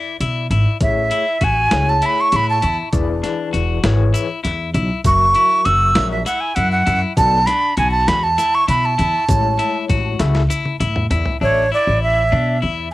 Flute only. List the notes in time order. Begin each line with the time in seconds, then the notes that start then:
0.82 E5
1.44 G#5
1.89 A5
2.06 B5
2.21 C#6
2.36 B5
2.50 A5
5.07 C#6
5.65 E6
6.11 E5
6.26 F#5
6.41 G#5
6.55 F#5
6.72 F#5
7.17 A5
7.46 B5
7.78 G#5
7.91 A5
8.08 B5
8.23 A5
8.55 C#6
8.69 B5
8.85 A5
11.43 C#5
11.74 D5
12.03 E5